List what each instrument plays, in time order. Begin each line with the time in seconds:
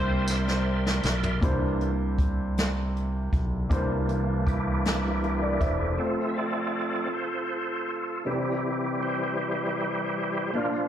Already playing: fingered electric bass C2, grand piano C3 A#3 D4 E4 C5, horn section C4 E4 G4 C5, tonewheel organ A#4 D5 E5 C6
0.28 snare, tambourine
0.48 snare
0.87 snare
1.04 fingered electric bass B1, snare, tambourine
1.23 floor tom
1.41 fingered electric bass C2, grand piano C3 A#3 D4 E4 C5, tonewheel organ E3 A#3 D4, kick, closed hi-hat
1.81 closed hi-hat
2.19 kick, closed hi-hat
2.57 snare, closed hi-hat
2.96 closed hi-hat
3.32 fingered electric bass B1, kick, closed hi-hat
3.69 fingered electric bass C2, grand piano C3 A#3 D4 E4 C5, tonewheel organ E3 A#3 D4, kick, closed hi-hat
4.09 closed hi-hat
4.46 tonewheel organ A#3 E4 G4, kick, closed hi-hat
4.85 snare, closed hi-hat
5.23 closed hi-hat
5.42 grand piano A#4 D5
5.61 fingered electric bass E1, grand piano C5 E5, kick, closed hi-hat
5.79 grand piano A4 C5
5.97 tonewheel organ F3 A3 C4 F4 A4, grand piano A3 C4 F4 C5
6.29 tonewheel organ E5
6.37 tonewheel organ F4 A4 D5
7.13 tonewheel organ F4 A4 C5
7.89 tonewheel organ A4
8.25 grand piano C3 G3 C4 E4 B4, tonewheel organ E3 G3 C4 E4 G4
8.34 grand piano C5
9.02 tonewheel organ E4 G4 C5
10.53 grand piano A#2 A#3 D4 F4 D5, tonewheel organ F3 A#3 D4 F4 A#4